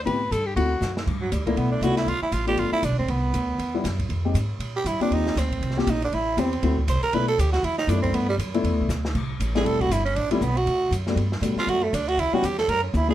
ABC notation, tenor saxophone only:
X:1
M:4/4
L:1/8
Q:"Swing" 1/4=238
K:G
V:1 name="Tenor saxophone"
z8 | z F, G, _B, =B, D F E | =F E F G F E D C | B,6 z2 |
z4 z G E D | _E2 C3 G E D | E2 C3 z c _B | B A G F E _E D C |
B, G, z6 | z3 _A =A F E ^C | D G, B, F3 z2 | z3 =F ^F A, D F |
E F G A _B ^C E ^G |]